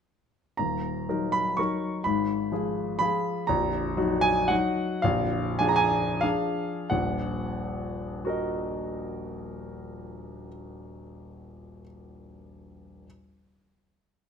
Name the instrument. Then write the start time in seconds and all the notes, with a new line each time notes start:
grand piano
0.57 D#1 D#2 A#5
1.09 F#3 D#4 A#4
1.32 B5
1.57 F#3 D#4 A#4 C#6
2.04 G#1 G#2 B5
2.52 F3 F4 G#4
2.99 F3 F4 G#4 B5
3.47 A#0 A#1 A#5
3.97 F#3 D#4 F#4
4.21 G#5
4.48 F#3 D#4 F#4 F#5
5.02 A#0 A#1 F5
5.59 F3 D4 G#4 G#5
5.69 A#5
5.76 G#5
6.21 F3 D4 G#4 F5
6.90 D#1 A#1 F#5
8.25 F#4 A#4
8.29 D#5